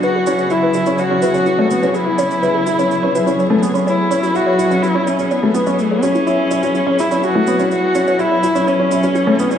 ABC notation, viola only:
X:1
M:4/4
L:1/8
Q:1/4=125
K:C#phr
V:1 name="Viola"
F2 E2 F4 | E6- E z | E2 F2 E C B,2 | A, C4 E F2 |
F2 E2 C4 |]